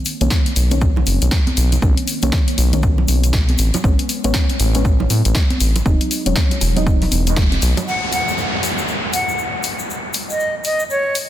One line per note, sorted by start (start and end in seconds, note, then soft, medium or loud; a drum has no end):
0.00 0.17 D#3 medium
0.00 0.17 A#3 medium
0.00 0.18 C#4 medium
0.05 open hi-hat loud
0.05 shaker medium
0.21 0.29 B1 loud
0.21 0.68 D#3 medium
0.21 0.68 A#3 medium
0.21 0.68 C#4 medium
0.21 closed hi-hat medium
0.21 high conga medium
0.21 shaker soft
0.30 kick loud
0.30 snare loud
0.30 shaker soft
0.46 closed hi-hat soft
0.56 1.03 B1 medium
0.56 open hi-hat loud
0.56 shaker medium
0.71 1.80 D#3 medium
0.71 1.80 A#3 medium
0.71 1.80 C#4 medium
0.71 closed hi-hat medium
0.71 high conga medium
0.71 shaker medium
0.81 kick loud
0.81 shaker soft
0.96 high bongo soft
0.96 low conga medium
1.07 1.19 F#1 medium
1.07 open hi-hat loud
1.07 high conga medium
1.07 shaker medium
1.22 1.30 B1 medium
1.22 closed hi-hat medium
1.22 shaker medium
1.31 kick loud
1.31 snare loud
1.31 shaker soft
1.47 closed hi-hat soft
1.47 high conga medium
1.57 1.78 B1 medium
1.57 open hi-hat loud
1.57 shaker medium
1.72 closed hi-hat medium
1.72 low conga medium
1.72 shaker soft
1.82 1.94 B1 loud
1.82 2.19 D#3 medium
1.82 2.19 A#3 medium
1.82 2.19 C#4 medium
1.82 kick loud
1.82 high conga medium
1.82 shaker soft
1.97 closed hi-hat medium
2.08 open hi-hat loud
2.08 shaker loud
2.22 2.31 B1 loud
2.22 2.69 D#3 medium
2.22 2.69 A#3 medium
2.22 2.70 C#4 medium
2.22 closed hi-hat medium
2.22 high conga medium
2.22 shaker medium
2.32 kick loud
2.32 snare loud
2.32 shaker soft
2.48 closed hi-hat medium
2.58 3.05 B1 medium
2.58 open hi-hat medium
2.58 high bongo soft
2.58 shaker medium
2.72 3.57 D#3 medium
2.72 3.58 A#3 medium
2.72 3.58 C#4 medium
2.72 closed hi-hat medium
2.72 high conga medium
2.72 shaker soft
2.83 kick loud
2.83 shaker soft
2.98 low conga medium
3.08 3.55 B1 medium
3.08 open hi-hat loud
3.08 high conga medium
3.08 shaker medium
3.24 closed hi-hat medium
3.24 shaker medium
3.33 kick loud
3.33 snare loud
3.33 shaker soft
3.49 closed hi-hat soft
3.49 high conga medium
3.58 3.71 A1 loud
3.58 open hi-hat loud
3.58 shaker medium
3.74 closed hi-hat medium
3.74 high bongo medium
3.74 low conga medium
3.74 shaker medium
3.84 3.96 A1 loud
3.84 4.21 G#3 medium
3.84 4.21 B3 medium
3.84 4.21 C#4 medium
3.84 kick loud
3.84 high conga medium
3.84 shaker soft
3.99 closed hi-hat medium
4.09 open hi-hat loud
4.09 shaker medium
4.24 4.32 A1 loud
4.24 4.71 G#3 medium
4.24 4.71 B3 medium
4.24 4.71 C#4 medium
4.24 closed hi-hat medium
4.24 high conga medium
4.24 shaker medium
4.34 kick medium
4.34 snare loud
4.34 shaker soft
4.50 closed hi-hat medium
4.60 5.07 A1 medium
4.60 open hi-hat loud
4.60 shaker medium
4.74 5.83 G#3 medium
4.74 5.83 B3 medium
4.74 5.84 C#4 medium
4.74 closed hi-hat medium
4.74 high conga medium
4.74 shaker soft
4.85 kick loud
4.85 shaker soft
5.00 high bongo soft
5.00 low conga medium
5.10 5.22 A2 medium
5.10 open hi-hat loud
5.10 high conga medium
5.10 shaker medium
5.25 5.33 A1 medium
5.25 closed hi-hat medium
5.25 shaker soft
5.35 kick loud
5.35 snare loud
5.35 shaker soft
5.50 closed hi-hat soft
5.50 high conga medium
5.60 5.82 A1 medium
5.60 open hi-hat loud
5.60 shaker medium
5.76 closed hi-hat medium
5.76 low conga medium
5.76 shaker medium
5.85 5.98 E1 loud
5.85 6.22 F#3 medium
5.85 6.22 G#3 medium
5.85 6.23 D#4 medium
5.85 kick loud
5.85 high conga medium
5.85 shaker soft
6.01 closed hi-hat medium
6.11 open hi-hat loud
6.11 shaker medium
6.26 6.34 E1 loud
6.26 6.73 F#3 medium
6.26 6.73 G#3 medium
6.26 6.73 C#4 medium
6.26 closed hi-hat medium
6.26 high conga medium
6.26 shaker soft
6.36 kick loud
6.36 snare loud
6.36 shaker soft
6.51 closed hi-hat medium
6.51 high bongo soft
6.61 7.08 E1 medium
6.61 open hi-hat loud
6.61 high bongo soft
6.61 shaker medium
6.76 7.85 F#3 medium
6.76 7.85 G#3 medium
6.76 7.85 D#4 medium
6.76 closed hi-hat medium
6.76 high conga medium
6.76 shaker soft
6.87 kick loud
6.87 shaker soft
7.02 open hi-hat medium
7.02 low conga medium
7.11 7.59 E1 medium
7.11 open hi-hat loud
7.11 high conga medium
7.11 shaker medium
7.27 closed hi-hat medium
7.27 shaker soft
7.36 kick loud
7.36 snare loud
7.36 shaker soft
7.52 closed hi-hat soft
7.52 high conga medium
7.62 7.74 B1 loud
7.62 open hi-hat loud
7.62 shaker medium
7.77 closed hi-hat medium
7.77 high bongo medium
7.77 low conga loud
7.77 shaker soft
7.87 8.06 F#5 medium
7.87 downlifter medium
7.87 shaker soft
8.12 8.39 F#5 medium
8.12 open hi-hat medium
8.12 shaker medium
8.28 shaker soft
8.38 shaker soft
8.63 open hi-hat medium
8.63 shaker medium
8.78 shaker medium
8.88 shaker soft
9.13 9.39 F#5 medium
9.13 open hi-hat loud
9.13 shaker medium
9.28 shaker soft
9.38 shaker soft
9.63 open hi-hat loud
9.63 shaker medium
9.79 shaker medium
9.90 shaker soft
10.14 open hi-hat loud
10.14 shaker loud
10.30 10.55 D#5 medium
10.30 shaker medium
10.40 shaker soft
10.64 10.84 D#5 medium
10.64 open hi-hat loud
10.64 shaker medium
10.79 shaker medium
10.90 11.16 C#5 medium
10.90 shaker soft
11.15 open hi-hat loud
11.15 shaker medium